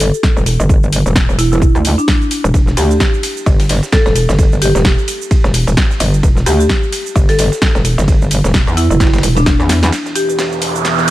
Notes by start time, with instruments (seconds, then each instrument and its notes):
Already playing: wobble bass G1
0.00 open hi-hat, shaker
0.14 shaker
0.23 kick, snare, shaker
0.37 wobble bass E1, shaker
0.46 open hi-hat, shaker
0.60 wobble bass G1, shaker
0.69 kick, shaker
0.83 shaker
0.93 open hi-hat, shaker
1.06 wobble bass E1, shaker
1.16 kick, snare, shaker
1.29 wobble bass E1, shaker
1.39 marimba E4, open hi-hat, shaker
1.52 marimba E4, shaker
1.62 kick, shaker
1.75 wobble bass D2, shaker
1.85 open hi-hat, shaker
1.98 marimba D4, shaker
2.08 kick, snare, open hi-hat, shaker
2.22 shaker
2.31 open hi-hat, shaker
2.44 wobble bass E1, shaker
2.54 wobble bass E1, kick, ride, shaker
2.67 snare, shaker
2.77 wobble bass D2, marimba G4, open hi-hat, ride, shaker
2.90 marimba G4, shaker
3.00 kick, snare, ride, shaker
3.14 shaker
3.23 open hi-hat, ride, shaker
3.37 shaker
3.46 wobble bass G1, kick, ride, shaker
3.60 snare, open hi-hat, shaker
3.69 snare, open hi-hat, shaker
3.83 snare, shaker
3.92 marimba A4, kick, snare, ride, shaker
4.06 wobble bass E1, marimba A4, snare, shaker
4.16 open hi-hat, ride, shaker
4.29 wobble bass G1, snare, shaker
4.39 kick, ride, shaker
4.52 shaker
4.62 marimba G4, open hi-hat, ride, shaker
4.75 wobble bass E1, snare, shaker
4.85 kick, snare, ride, shaker
4.99 shaker
5.08 open hi-hat, ride, shaker
5.22 shaker
5.31 kick, ride, shaker
5.44 wobble bass E1, snare, shaker
5.54 open hi-hat, ride, shaker
5.67 wobble bass E1, ride, shaker
5.77 kick, snare, open hi-hat, ride, shaker
5.90 snare, shaker
6.00 wobble bass G1, open hi-hat, ride, shaker
6.14 shaker
6.23 wobble bass E1, kick, ride, shaker
6.37 snare, shaker
6.46 wobble bass D2, marimba G4, open hi-hat, ride, shaker
6.60 marimba G4, shaker
6.69 kick, snare, ride, shaker
6.83 shaker
6.92 open hi-hat, ride, shaker
7.06 shaker
7.16 wobble bass G1, kick, ride, shaker
7.29 marimba A4, snare, open hi-hat, shaker
7.39 snare, open hi-hat, shaker
7.52 snare, shaker
7.62 kick, snare, ride, shaker
7.75 wobble bass E1, snare, shaker
7.85 open hi-hat, ride, shaker
7.98 wobble bass G1, snare, shaker
8.08 kick, ride, shaker
8.22 shaker
8.31 open hi-hat, ride, shaker
8.44 wobble bass E1, snare, shaker
8.54 kick, snare, ride, shaker
8.67 wobble bass E2, shaker
8.77 marimba E4, open hi-hat, ride, shaker
8.90 wobble bass F#1, marimba E4, shaker
9.00 kick, snare, ride, shaker
9.07 snare, ride
9.14 snare, ride, shaker
9.18 snare, ride
9.23 wobble bass E1, open hi-hat, ride, shaker
9.37 marimba D4, ride, shaker
9.46 marimba D4, kick, snare, open hi-hat, ride, shaker
9.60 wobble bass E2, snare, shaker
9.69 snare, open hi-hat, ride, shaker
9.83 snare, shaker
9.92 analog synth pad E3 B3 B4 E5, snare, ride, riser, shaker
10.06 snare, shaker
10.15 marimba G4, open hi-hat, ride, shaker
10.29 marimba G4, shaker
10.39 snare, ride, shaker
10.52 shaker
10.62 open hi-hat, ride, shaker
10.75 shaker
10.85 snare, ride, shaker
10.98 snare, shaker